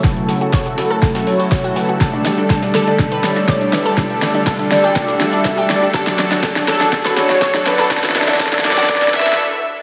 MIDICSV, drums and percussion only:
0, 0, Header, 1, 2, 480
1, 0, Start_track
1, 0, Tempo, 491803
1, 40, Time_signature, 4, 2, 24, 8
1, 9588, End_track
2, 0, Start_track
2, 0, Title_t, "Drums"
2, 39, Note_on_c, 9, 36, 123
2, 39, Note_on_c, 9, 38, 67
2, 39, Note_on_c, 9, 42, 63
2, 40, Note_off_c, 9, 42, 0
2, 40, Note_on_c, 9, 42, 88
2, 137, Note_off_c, 9, 36, 0
2, 137, Note_off_c, 9, 38, 0
2, 138, Note_off_c, 9, 42, 0
2, 161, Note_on_c, 9, 42, 36
2, 259, Note_off_c, 9, 42, 0
2, 278, Note_on_c, 9, 46, 113
2, 280, Note_on_c, 9, 38, 46
2, 280, Note_on_c, 9, 42, 64
2, 376, Note_off_c, 9, 46, 0
2, 378, Note_off_c, 9, 38, 0
2, 378, Note_off_c, 9, 42, 0
2, 402, Note_on_c, 9, 42, 36
2, 499, Note_off_c, 9, 42, 0
2, 519, Note_on_c, 9, 36, 122
2, 519, Note_on_c, 9, 38, 68
2, 519, Note_on_c, 9, 42, 65
2, 520, Note_off_c, 9, 38, 0
2, 520, Note_off_c, 9, 42, 0
2, 520, Note_on_c, 9, 38, 114
2, 520, Note_on_c, 9, 42, 89
2, 617, Note_off_c, 9, 36, 0
2, 617, Note_off_c, 9, 38, 0
2, 617, Note_off_c, 9, 42, 0
2, 642, Note_on_c, 9, 42, 44
2, 740, Note_off_c, 9, 42, 0
2, 759, Note_on_c, 9, 38, 99
2, 759, Note_on_c, 9, 42, 80
2, 759, Note_on_c, 9, 46, 116
2, 857, Note_off_c, 9, 38, 0
2, 857, Note_off_c, 9, 42, 0
2, 857, Note_off_c, 9, 46, 0
2, 882, Note_on_c, 9, 42, 39
2, 979, Note_off_c, 9, 42, 0
2, 999, Note_on_c, 9, 36, 120
2, 999, Note_on_c, 9, 38, 68
2, 999, Note_on_c, 9, 42, 62
2, 999, Note_on_c, 9, 46, 67
2, 1097, Note_off_c, 9, 36, 0
2, 1097, Note_off_c, 9, 38, 0
2, 1097, Note_off_c, 9, 42, 0
2, 1097, Note_off_c, 9, 46, 0
2, 1121, Note_on_c, 9, 42, 36
2, 1123, Note_off_c, 9, 42, 0
2, 1123, Note_on_c, 9, 38, 100
2, 1123, Note_on_c, 9, 42, 78
2, 1220, Note_off_c, 9, 38, 0
2, 1220, Note_off_c, 9, 42, 0
2, 1238, Note_on_c, 9, 46, 111
2, 1336, Note_off_c, 9, 46, 0
2, 1362, Note_on_c, 9, 42, 40
2, 1362, Note_on_c, 9, 46, 72
2, 1459, Note_off_c, 9, 42, 0
2, 1460, Note_off_c, 9, 46, 0
2, 1479, Note_on_c, 9, 36, 123
2, 1479, Note_on_c, 9, 38, 118
2, 1479, Note_on_c, 9, 42, 90
2, 1577, Note_off_c, 9, 36, 0
2, 1577, Note_off_c, 9, 38, 0
2, 1577, Note_off_c, 9, 42, 0
2, 1602, Note_on_c, 9, 42, 38
2, 1699, Note_off_c, 9, 42, 0
2, 1719, Note_on_c, 9, 46, 81
2, 1817, Note_off_c, 9, 46, 0
2, 1842, Note_on_c, 9, 42, 37
2, 1939, Note_off_c, 9, 42, 0
2, 1959, Note_on_c, 9, 36, 117
2, 1959, Note_on_c, 9, 38, 76
2, 1959, Note_on_c, 9, 42, 65
2, 1960, Note_off_c, 9, 42, 0
2, 1960, Note_on_c, 9, 42, 86
2, 2057, Note_off_c, 9, 36, 0
2, 2057, Note_off_c, 9, 38, 0
2, 2057, Note_off_c, 9, 42, 0
2, 2082, Note_on_c, 9, 42, 37
2, 2179, Note_off_c, 9, 42, 0
2, 2199, Note_on_c, 9, 38, 76
2, 2199, Note_on_c, 9, 42, 67
2, 2199, Note_on_c, 9, 46, 107
2, 2297, Note_off_c, 9, 38, 0
2, 2297, Note_off_c, 9, 42, 0
2, 2297, Note_off_c, 9, 46, 0
2, 2322, Note_on_c, 9, 42, 36
2, 2420, Note_off_c, 9, 42, 0
2, 2439, Note_on_c, 9, 36, 116
2, 2439, Note_on_c, 9, 38, 113
2, 2439, Note_on_c, 9, 42, 85
2, 2537, Note_off_c, 9, 36, 0
2, 2537, Note_off_c, 9, 38, 0
2, 2537, Note_off_c, 9, 42, 0
2, 2562, Note_on_c, 9, 38, 49
2, 2562, Note_on_c, 9, 42, 39
2, 2660, Note_off_c, 9, 38, 0
2, 2660, Note_off_c, 9, 42, 0
2, 2679, Note_on_c, 9, 38, 79
2, 2679, Note_on_c, 9, 46, 110
2, 2680, Note_on_c, 9, 42, 67
2, 2777, Note_off_c, 9, 38, 0
2, 2777, Note_off_c, 9, 42, 0
2, 2777, Note_off_c, 9, 46, 0
2, 2802, Note_on_c, 9, 42, 39
2, 2900, Note_off_c, 9, 42, 0
2, 2919, Note_on_c, 9, 36, 120
2, 2919, Note_on_c, 9, 38, 78
2, 2919, Note_on_c, 9, 42, 62
2, 3017, Note_off_c, 9, 36, 0
2, 3017, Note_off_c, 9, 38, 0
2, 3017, Note_off_c, 9, 42, 0
2, 3042, Note_on_c, 9, 42, 37
2, 3139, Note_off_c, 9, 42, 0
2, 3159, Note_on_c, 9, 38, 81
2, 3159, Note_on_c, 9, 42, 69
2, 3159, Note_on_c, 9, 46, 110
2, 3257, Note_off_c, 9, 38, 0
2, 3257, Note_off_c, 9, 42, 0
2, 3257, Note_off_c, 9, 46, 0
2, 3282, Note_on_c, 9, 38, 46
2, 3282, Note_on_c, 9, 42, 39
2, 3380, Note_off_c, 9, 38, 0
2, 3380, Note_off_c, 9, 42, 0
2, 3398, Note_on_c, 9, 38, 115
2, 3398, Note_on_c, 9, 42, 91
2, 3399, Note_on_c, 9, 36, 119
2, 3400, Note_off_c, 9, 38, 0
2, 3400, Note_off_c, 9, 42, 0
2, 3400, Note_on_c, 9, 38, 80
2, 3400, Note_on_c, 9, 42, 64
2, 3497, Note_off_c, 9, 36, 0
2, 3497, Note_off_c, 9, 38, 0
2, 3497, Note_off_c, 9, 42, 0
2, 3522, Note_on_c, 9, 42, 39
2, 3620, Note_off_c, 9, 42, 0
2, 3639, Note_on_c, 9, 38, 83
2, 3639, Note_on_c, 9, 42, 70
2, 3639, Note_on_c, 9, 46, 108
2, 3737, Note_off_c, 9, 38, 0
2, 3737, Note_off_c, 9, 42, 0
2, 3737, Note_off_c, 9, 46, 0
2, 3762, Note_on_c, 9, 42, 37
2, 3859, Note_off_c, 9, 42, 0
2, 3879, Note_on_c, 9, 36, 113
2, 3879, Note_on_c, 9, 38, 81
2, 3879, Note_on_c, 9, 42, 67
2, 3977, Note_off_c, 9, 36, 0
2, 3977, Note_off_c, 9, 38, 0
2, 3977, Note_off_c, 9, 42, 0
2, 4002, Note_on_c, 9, 42, 39
2, 4099, Note_off_c, 9, 42, 0
2, 4119, Note_on_c, 9, 38, 87
2, 4119, Note_on_c, 9, 42, 68
2, 4119, Note_on_c, 9, 46, 107
2, 4216, Note_off_c, 9, 42, 0
2, 4217, Note_off_c, 9, 38, 0
2, 4217, Note_off_c, 9, 46, 0
2, 4242, Note_on_c, 9, 42, 38
2, 4340, Note_off_c, 9, 42, 0
2, 4359, Note_on_c, 9, 36, 119
2, 4359, Note_on_c, 9, 38, 87
2, 4359, Note_on_c, 9, 42, 66
2, 4456, Note_off_c, 9, 36, 0
2, 4457, Note_off_c, 9, 38, 0
2, 4457, Note_off_c, 9, 42, 0
2, 4481, Note_on_c, 9, 42, 39
2, 4579, Note_off_c, 9, 42, 0
2, 4599, Note_on_c, 9, 38, 89
2, 4599, Note_on_c, 9, 42, 67
2, 4599, Note_on_c, 9, 46, 107
2, 4697, Note_off_c, 9, 38, 0
2, 4697, Note_off_c, 9, 42, 0
2, 4697, Note_off_c, 9, 46, 0
2, 4722, Note_on_c, 9, 42, 41
2, 4820, Note_off_c, 9, 42, 0
2, 4839, Note_on_c, 9, 36, 115
2, 4839, Note_on_c, 9, 42, 87
2, 4840, Note_off_c, 9, 42, 0
2, 4840, Note_on_c, 9, 38, 87
2, 4840, Note_on_c, 9, 42, 67
2, 4936, Note_off_c, 9, 36, 0
2, 4937, Note_off_c, 9, 38, 0
2, 4937, Note_off_c, 9, 42, 0
2, 4961, Note_on_c, 9, 38, 54
2, 4962, Note_on_c, 9, 42, 38
2, 5059, Note_off_c, 9, 38, 0
2, 5060, Note_off_c, 9, 42, 0
2, 5079, Note_on_c, 9, 38, 91
2, 5079, Note_on_c, 9, 42, 69
2, 5079, Note_on_c, 9, 46, 105
2, 5176, Note_off_c, 9, 38, 0
2, 5176, Note_off_c, 9, 42, 0
2, 5176, Note_off_c, 9, 46, 0
2, 5201, Note_on_c, 9, 42, 41
2, 5299, Note_off_c, 9, 42, 0
2, 5318, Note_on_c, 9, 38, 92
2, 5318, Note_on_c, 9, 42, 67
2, 5319, Note_off_c, 9, 38, 0
2, 5319, Note_off_c, 9, 42, 0
2, 5319, Note_on_c, 9, 36, 118
2, 5319, Note_on_c, 9, 38, 118
2, 5319, Note_on_c, 9, 42, 91
2, 5416, Note_off_c, 9, 38, 0
2, 5416, Note_off_c, 9, 42, 0
2, 5417, Note_off_c, 9, 36, 0
2, 5441, Note_on_c, 9, 42, 40
2, 5539, Note_off_c, 9, 42, 0
2, 5559, Note_on_c, 9, 38, 95
2, 5559, Note_on_c, 9, 46, 107
2, 5656, Note_off_c, 9, 38, 0
2, 5656, Note_off_c, 9, 46, 0
2, 5682, Note_on_c, 9, 42, 40
2, 5779, Note_off_c, 9, 42, 0
2, 5798, Note_on_c, 9, 42, 91
2, 5799, Note_off_c, 9, 42, 0
2, 5799, Note_on_c, 9, 36, 112
2, 5799, Note_on_c, 9, 38, 93
2, 5799, Note_on_c, 9, 42, 70
2, 5896, Note_off_c, 9, 36, 0
2, 5897, Note_off_c, 9, 38, 0
2, 5897, Note_off_c, 9, 42, 0
2, 5922, Note_on_c, 9, 38, 84
2, 5922, Note_on_c, 9, 42, 40
2, 6020, Note_off_c, 9, 38, 0
2, 6020, Note_off_c, 9, 42, 0
2, 6039, Note_on_c, 9, 42, 67
2, 6040, Note_on_c, 9, 38, 97
2, 6040, Note_on_c, 9, 46, 102
2, 6137, Note_off_c, 9, 38, 0
2, 6137, Note_off_c, 9, 42, 0
2, 6137, Note_off_c, 9, 46, 0
2, 6162, Note_on_c, 9, 38, 81
2, 6162, Note_on_c, 9, 42, 41
2, 6260, Note_off_c, 9, 38, 0
2, 6260, Note_off_c, 9, 42, 0
2, 6278, Note_on_c, 9, 38, 117
2, 6278, Note_on_c, 9, 42, 88
2, 6279, Note_on_c, 9, 36, 114
2, 6280, Note_off_c, 9, 38, 0
2, 6280, Note_off_c, 9, 42, 0
2, 6280, Note_on_c, 9, 38, 98
2, 6280, Note_on_c, 9, 42, 69
2, 6376, Note_off_c, 9, 36, 0
2, 6377, Note_off_c, 9, 38, 0
2, 6377, Note_off_c, 9, 42, 0
2, 6401, Note_on_c, 9, 38, 51
2, 6403, Note_off_c, 9, 38, 0
2, 6403, Note_on_c, 9, 38, 85
2, 6403, Note_on_c, 9, 42, 40
2, 6500, Note_off_c, 9, 38, 0
2, 6500, Note_off_c, 9, 42, 0
2, 6519, Note_on_c, 9, 42, 67
2, 6520, Note_on_c, 9, 38, 98
2, 6520, Note_on_c, 9, 46, 102
2, 6616, Note_off_c, 9, 42, 0
2, 6617, Note_off_c, 9, 38, 0
2, 6617, Note_off_c, 9, 46, 0
2, 6643, Note_on_c, 9, 38, 85
2, 6643, Note_on_c, 9, 42, 43
2, 6740, Note_off_c, 9, 38, 0
2, 6740, Note_off_c, 9, 42, 0
2, 6759, Note_on_c, 9, 36, 111
2, 6759, Note_on_c, 9, 42, 86
2, 6760, Note_off_c, 9, 42, 0
2, 6760, Note_on_c, 9, 38, 100
2, 6760, Note_on_c, 9, 42, 67
2, 6857, Note_off_c, 9, 36, 0
2, 6858, Note_off_c, 9, 38, 0
2, 6858, Note_off_c, 9, 42, 0
2, 6883, Note_on_c, 9, 38, 82
2, 6883, Note_on_c, 9, 42, 41
2, 6980, Note_off_c, 9, 38, 0
2, 6980, Note_off_c, 9, 42, 0
2, 6999, Note_on_c, 9, 42, 69
2, 7000, Note_on_c, 9, 38, 99
2, 7000, Note_on_c, 9, 46, 103
2, 7097, Note_off_c, 9, 38, 0
2, 7097, Note_off_c, 9, 42, 0
2, 7097, Note_off_c, 9, 46, 0
2, 7122, Note_on_c, 9, 38, 91
2, 7122, Note_on_c, 9, 42, 42
2, 7220, Note_off_c, 9, 38, 0
2, 7220, Note_off_c, 9, 42, 0
2, 7239, Note_on_c, 9, 36, 118
2, 7239, Note_on_c, 9, 38, 118
2, 7239, Note_on_c, 9, 42, 91
2, 7240, Note_off_c, 9, 38, 0
2, 7240, Note_off_c, 9, 42, 0
2, 7240, Note_on_c, 9, 38, 106
2, 7240, Note_on_c, 9, 42, 69
2, 7336, Note_off_c, 9, 36, 0
2, 7337, Note_off_c, 9, 38, 0
2, 7337, Note_off_c, 9, 42, 0
2, 7362, Note_on_c, 9, 38, 91
2, 7362, Note_on_c, 9, 42, 42
2, 7459, Note_off_c, 9, 38, 0
2, 7459, Note_off_c, 9, 42, 0
2, 7479, Note_on_c, 9, 38, 104
2, 7479, Note_on_c, 9, 42, 85
2, 7479, Note_on_c, 9, 46, 102
2, 7576, Note_off_c, 9, 38, 0
2, 7576, Note_off_c, 9, 42, 0
2, 7576, Note_off_c, 9, 46, 0
2, 7602, Note_on_c, 9, 38, 87
2, 7602, Note_on_c, 9, 42, 41
2, 7699, Note_off_c, 9, 38, 0
2, 7699, Note_off_c, 9, 42, 0
2, 7718, Note_on_c, 9, 38, 102
2, 7718, Note_on_c, 9, 42, 70
2, 7719, Note_off_c, 9, 38, 0
2, 7719, Note_off_c, 9, 42, 0
2, 7719, Note_on_c, 9, 36, 119
2, 7719, Note_on_c, 9, 38, 105
2, 7719, Note_on_c, 9, 42, 81
2, 7780, Note_off_c, 9, 38, 0
2, 7780, Note_on_c, 9, 38, 89
2, 7816, Note_off_c, 9, 36, 0
2, 7817, Note_off_c, 9, 42, 0
2, 7841, Note_off_c, 9, 38, 0
2, 7841, Note_on_c, 9, 38, 89
2, 7841, Note_on_c, 9, 42, 42
2, 7842, Note_off_c, 9, 38, 0
2, 7842, Note_off_c, 9, 42, 0
2, 7842, Note_on_c, 9, 38, 106
2, 7842, Note_on_c, 9, 42, 82
2, 7900, Note_off_c, 9, 38, 0
2, 7900, Note_on_c, 9, 38, 91
2, 7939, Note_off_c, 9, 42, 0
2, 7959, Note_off_c, 9, 38, 0
2, 7959, Note_on_c, 9, 38, 102
2, 7959, Note_on_c, 9, 42, 79
2, 7959, Note_on_c, 9, 46, 107
2, 8021, Note_off_c, 9, 38, 0
2, 8021, Note_on_c, 9, 38, 96
2, 8056, Note_off_c, 9, 42, 0
2, 8056, Note_off_c, 9, 46, 0
2, 8082, Note_off_c, 9, 38, 0
2, 8082, Note_on_c, 9, 38, 113
2, 8082, Note_on_c, 9, 42, 82
2, 8140, Note_off_c, 9, 38, 0
2, 8140, Note_on_c, 9, 38, 88
2, 8179, Note_off_c, 9, 42, 0
2, 8199, Note_off_c, 9, 38, 0
2, 8199, Note_on_c, 9, 36, 117
2, 8199, Note_on_c, 9, 38, 107
2, 8199, Note_on_c, 9, 42, 70
2, 8261, Note_off_c, 9, 38, 0
2, 8261, Note_on_c, 9, 38, 95
2, 8296, Note_off_c, 9, 36, 0
2, 8296, Note_off_c, 9, 42, 0
2, 8321, Note_off_c, 9, 38, 0
2, 8321, Note_on_c, 9, 38, 97
2, 8321, Note_on_c, 9, 46, 60
2, 8322, Note_on_c, 9, 42, 45
2, 8380, Note_off_c, 9, 38, 0
2, 8380, Note_on_c, 9, 38, 94
2, 8419, Note_off_c, 9, 42, 0
2, 8419, Note_off_c, 9, 46, 0
2, 8439, Note_off_c, 9, 38, 0
2, 8439, Note_on_c, 9, 38, 106
2, 8439, Note_on_c, 9, 42, 67
2, 8439, Note_on_c, 9, 46, 108
2, 8500, Note_off_c, 9, 38, 0
2, 8500, Note_on_c, 9, 38, 99
2, 8537, Note_off_c, 9, 42, 0
2, 8537, Note_off_c, 9, 46, 0
2, 8562, Note_off_c, 9, 38, 0
2, 8562, Note_on_c, 9, 38, 98
2, 8562, Note_on_c, 9, 42, 41
2, 8621, Note_off_c, 9, 38, 0
2, 8621, Note_on_c, 9, 38, 96
2, 8660, Note_off_c, 9, 42, 0
2, 8679, Note_on_c, 9, 36, 113
2, 8679, Note_on_c, 9, 42, 88
2, 8680, Note_off_c, 9, 38, 0
2, 8680, Note_off_c, 9, 42, 0
2, 8680, Note_on_c, 9, 38, 105
2, 8680, Note_on_c, 9, 42, 71
2, 8741, Note_off_c, 9, 38, 0
2, 8741, Note_on_c, 9, 38, 96
2, 8776, Note_off_c, 9, 36, 0
2, 8777, Note_off_c, 9, 42, 0
2, 8802, Note_off_c, 9, 38, 0
2, 8802, Note_on_c, 9, 38, 91
2, 8802, Note_on_c, 9, 42, 40
2, 8861, Note_off_c, 9, 38, 0
2, 8861, Note_on_c, 9, 38, 95
2, 8900, Note_off_c, 9, 42, 0
2, 8919, Note_off_c, 9, 38, 0
2, 8919, Note_on_c, 9, 36, 59
2, 8919, Note_on_c, 9, 38, 112
2, 8919, Note_on_c, 9, 42, 69
2, 8919, Note_on_c, 9, 46, 107
2, 8980, Note_off_c, 9, 38, 0
2, 8980, Note_on_c, 9, 38, 95
2, 9016, Note_off_c, 9, 36, 0
2, 9017, Note_off_c, 9, 42, 0
2, 9017, Note_off_c, 9, 46, 0
2, 9042, Note_off_c, 9, 38, 0
2, 9042, Note_on_c, 9, 38, 101
2, 9042, Note_on_c, 9, 42, 45
2, 9100, Note_off_c, 9, 38, 0
2, 9100, Note_on_c, 9, 38, 100
2, 9139, Note_off_c, 9, 42, 0
2, 9198, Note_off_c, 9, 38, 0
2, 9588, End_track
0, 0, End_of_file